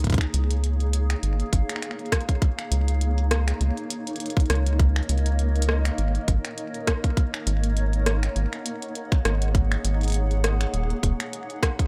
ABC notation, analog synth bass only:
X:1
M:4/4
L:1/8
Q:"Swing 16ths" 1/4=101
K:C#mix
V:1 name="Analog synth bass" clef=bass
C,, C,,3 G,,, G,,, z2 | z C,,3 C,, z2 C,,- | C,, C,,3 G,,, G,,, z2 | z G,,,3 G,,, z2 G,,,- |
G,,, G,,,3 D,,, D,,, z2 |]